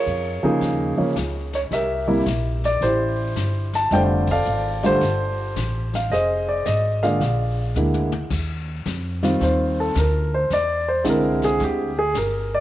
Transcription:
0.00 0.45 F4 medium
0.00 0.43 G#4 medium
0.00 0.96 A#4 medium
0.00 0.46 C#5 medium
0.06 0.41 F2 medium
0.06 hi-hat pedal medium
0.43 0.95 C#3 medium
0.43 0.95 F3 medium
0.43 0.95 A#3 medium
0.43 0.95 D#4 medium
0.43 1.51 F4 medium
0.43 1.50 G#4 medium
0.43 muted upright bass stroke soft
0.61 0.96 D#2 medium
0.61 brush sweep medium
0.61 snare soft
0.97 1.14 C#3 medium
0.97 1.14 F3 medium
0.97 1.14 A#3 medium
0.97 1.15 C#4 medium
0.97 muted upright bass stroke soft
1.16 1.70 C#2 medium
1.16 snare medium
1.16 hi-hat pedal medium
1.53 1.60 C#5 medium
1.53 snare soft
1.71 2.25 C2 medium
1.71 2.79 G4 medium
1.71 2.79 A#4 medium
1.71 2.67 E5 medium
1.71 brush sweep soft
1.71 snare soft
2.07 2.24 C3 medium
2.07 2.24 G3 medium
2.07 2.24 A#3 medium
2.07 2.24 E4 medium
2.26 2.80 A#1 medium
2.26 snare medium
2.26 hi-hat pedal medium
2.64 2.83 D5 medium
2.64 snare soft
2.81 3.35 A1 medium
2.81 3.88 E4 medium
2.81 3.88 G4 medium
2.81 3.77 C5 medium
2.81 brush sweep medium
2.81 snare soft
3.36 3.90 G1 medium
3.36 snare medium
3.36 hi-hat pedal medium
3.73 3.93 A5 medium
3.73 snare soft
3.91 4.45 F1 medium
3.91 4.25 D3 medium
3.91 4.26 G3 medium
3.91 4.26 A3 medium
3.91 4.26 F4 medium
3.91 4.85 C5 medium
3.91 4.30 D5 medium
3.91 4.01 G5 medium
3.91 brush sweep soft
3.91 snare soft
4.27 kick medium
4.27 ride medium
4.31 4.85 A4 medium
4.31 5.36 D5 medium
4.31 4.87 F5 medium
4.45 5.00 G#1 medium
4.45 hi-hat pedal medium
4.83 5.00 D3 medium
4.83 5.00 G3 medium
4.83 5.00 A3 medium
4.83 5.00 F4 medium
4.83 5.91 G4 medium
4.83 5.91 A4 medium
4.83 5.98 C5 loud
4.83 snare soft
5.01 5.55 G1 medium
5.01 brush sweep soft
5.01 snare soft
5.56 6.09 A1 medium
5.56 snare medium
5.56 hi-hat pedal medium
5.94 6.11 F5 medium
5.94 snare soft
6.10 6.64 F1 medium
6.10 7.03 G#4 medium
6.10 7.18 C5 medium
6.10 6.50 D#5 medium
6.10 brush sweep soft
6.10 snare soft
6.49 6.65 D5 medium
6.65 7.19 G#1 medium
6.65 7.00 D#5 medium
6.65 snare medium
6.65 hi-hat pedal medium
7.03 7.19 D3 medium
7.03 7.19 G#3 medium
7.03 7.19 A#3 medium
7.03 7.19 F4 medium
7.03 8.10 G#4 medium
7.03 8.10 D5 medium
7.03 8.09 F5 medium
7.03 snare soft
7.20 7.74 A#1 medium
7.20 brush sweep soft
7.20 snare soft
7.75 8.29 D2 medium
7.75 8.09 D3 medium
7.75 8.09 G#3 soft
7.75 8.10 A#3 soft
7.75 8.09 E4 medium
7.75 hi-hat pedal medium
7.75 mid tom soft
7.94 mid tom soft
8.12 mid tom medium
8.30 8.84 D#2 medium
8.30 brush sweep soft
8.30 kick medium
8.30 snare soft
8.30 crash medium
8.85 9.39 F2 medium
8.85 snare medium
8.85 hi-hat pedal soft
9.23 9.92 D#3 medium
9.23 9.92 G3 medium
9.23 9.92 C4 medium
9.23 9.92 F4 medium
9.23 snare soft
9.41 9.94 D#2 medium
9.41 9.78 C5 medium
9.41 brush sweep soft
9.41 snare soft
9.80 9.96 A4 medium
9.95 10.48 D2 medium
9.95 10.33 A#4 medium
9.95 snare medium
9.95 hi-hat pedal medium
10.34 10.51 C5 medium
10.50 11.03 E2 medium
10.50 10.88 D5 medium
10.50 brush sweep soft
10.50 snare soft
10.89 11.05 C5 medium
11.04 11.58 C2 medium
11.04 11.89 D3 medium
11.04 11.89 G#3 medium
11.04 11.89 C4 medium
11.04 11.89 E4 medium
11.04 snare medium
11.04 hi-hat pedal medium
11.09 11.43 A#4 medium
11.42 11.60 G#4 medium
11.42 snare soft
11.60 12.13 D2 medium
11.60 brush sweep soft
11.60 snare soft
11.64 11.98 G4 medium
11.99 12.15 G#4 medium
12.14 12.60 G1 medium
12.14 12.52 A#4 medium
12.14 snare medium
12.14 hi-hat pedal medium
12.55 12.60 D5 medium

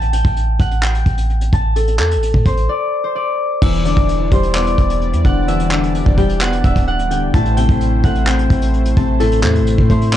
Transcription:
0.00 0.23 A1 loud
0.00 0.93 E5 medium
0.00 0.13 G5 medium
0.00 1.35 A5 loud
0.00 closed hi-hat medium
0.13 0.66 G5 medium
0.13 closed hi-hat medium
0.25 0.58 A1 loud
0.25 kick loud
0.25 closed hi-hat medium
0.37 closed hi-hat medium
0.59 1.04 A1 loud
0.59 0.89 F#5 medium
0.59 kick loud
0.59 closed hi-hat medium
0.71 closed hi-hat medium
0.83 2.38 G5 medium
0.83 clap loud
0.83 closed hi-hat medium
0.95 closed hi-hat medium
1.06 1.51 A1 loud
1.06 kick medium
1.06 closed hi-hat medium
1.18 closed hi-hat medium
1.29 closed hi-hat soft
1.41 closed hi-hat medium
1.53 2.01 A1 loud
1.53 2.98 A5 medium
1.53 kick loud
1.53 closed hi-hat medium
1.76 1.99 A4 medium
1.76 closed hi-hat medium
1.88 closed hi-hat medium
1.99 2.18 E2 loud
1.99 4.19 A4 medium
1.99 clap loud
1.99 closed hi-hat medium
2.11 closed hi-hat medium
2.17 2.33 A1 loud
2.23 closed hi-hat medium
2.34 2.45 A2 loud
2.34 kick loud
2.46 2.68 A1 loud
2.46 3.04 C5 medium
2.46 kick medium
2.46 closed hi-hat medium
2.57 closed hi-hat medium
2.69 3.15 D5 medium
3.04 4.31 C5 medium
3.15 3.85 D5 medium
3.62 3.95 E1 loud
3.62 4.78 E2 medium
3.62 7.30 G3 medium
3.62 5.46 E4 medium
3.62 7.30 D5 loud
3.62 5.34 E5 medium
3.62 kick loud
3.62 crash loud
3.74 closed hi-hat medium
3.85 5.02 D3 medium
3.85 4.55 D5 medium
3.85 closed hi-hat medium
3.97 4.30 E1 loud
3.97 kick loud
3.97 closed hi-hat medium
4.09 closed hi-hat medium
4.32 4.76 E1 loud
4.32 5.48 G3 medium
4.32 6.30 C5 medium
4.32 kick loud
4.32 closed hi-hat medium
4.43 closed hi-hat medium
4.55 5.71 B3 medium
4.55 6.40 D5 medium
4.55 clap loud
4.55 closed hi-hat medium
4.67 closed hi-hat medium
4.78 5.15 E1 loud
4.78 kick medium
4.78 closed hi-hat medium
4.90 closed hi-hat medium
5.02 closed hi-hat soft
5.13 5.24 E2 loud
5.13 closed hi-hat medium
5.25 6.03 E1 loud
5.25 5.70 D3 medium
5.25 6.24 F#5 medium
5.25 kick loud
5.25 closed hi-hat medium
5.48 6.64 E2 medium
5.48 7.32 D4 medium
5.48 5.71 E5 medium
5.48 closed hi-hat medium
5.60 closed hi-hat medium
5.71 6.88 D3 medium
5.71 6.64 E5 medium
5.71 clap loud
5.71 closed hi-hat medium
5.83 closed hi-hat medium
5.95 closed hi-hat medium
6.06 6.62 E1 loud
6.06 kick loud
6.18 7.34 G3 loud
6.18 6.47 G5 medium
6.18 kick loud
6.18 closed hi-hat medium
6.29 closed hi-hat medium
6.41 7.34 B3 medium
6.41 6.87 F#5 medium
6.41 clap loud
6.41 closed hi-hat medium
6.53 closed hi-hat medium
6.64 7.31 D1 loud
6.64 8.37 E5 medium
6.64 kick medium
6.64 closed hi-hat medium
6.76 kick loud
6.76 closed hi-hat medium
6.88 7.17 F#5 medium
6.88 closed hi-hat soft
6.99 closed hi-hat medium
7.11 7.34 D3 medium
7.11 7.56 G5 medium
7.11 closed hi-hat medium
7.34 7.68 A1 loud
7.34 8.50 A2 medium
7.34 10.17 A3 medium
7.34 10.17 E4 medium
7.34 10.17 C5 loud
7.34 8.79 A5 loud
7.34 kick loud
7.34 closed hi-hat medium
7.46 closed hi-hat medium
7.57 8.73 C3 medium
7.57 8.10 G5 medium
7.57 closed hi-hat medium
7.69 8.02 A1 loud
7.69 kick loud
7.69 closed hi-hat medium
7.81 closed hi-hat medium
8.04 8.49 A1 loud
8.04 9.20 A3 medium
8.04 8.33 F#5 medium
8.04 kick loud
8.04 closed hi-hat medium
8.15 closed hi-hat medium
8.27 9.43 C4 medium
8.27 9.82 G5 loud
8.27 clap loud
8.27 closed hi-hat medium
8.39 closed hi-hat medium
8.50 8.95 A1 loud
8.50 kick loud
8.50 closed hi-hat medium
8.62 closed hi-hat medium
8.74 closed hi-hat soft
8.85 closed hi-hat medium
8.97 9.45 A1 loud
8.97 9.42 C3 medium
8.97 10.17 A5 medium
8.97 kick loud
8.97 closed hi-hat medium
9.20 10.17 A2 loud
9.20 9.43 A4 loud
9.20 closed hi-hat medium
9.32 closed hi-hat medium
9.43 9.62 E2 loud
9.43 10.17 C3 medium
9.43 10.17 A4 medium
9.43 clap loud
9.43 closed hi-hat medium
9.55 closed hi-hat medium
9.61 9.77 A1 loud
9.67 closed hi-hat medium
9.78 10.17 A2 loud
9.78 kick loud
9.90 10.17 A3 loud
9.90 10.17 C5 medium
9.90 kick loud
9.90 closed hi-hat medium
10.01 closed hi-hat medium
10.13 10.17 C4 medium
10.13 10.17 D5 medium
10.13 clap loud
10.13 closed hi-hat medium

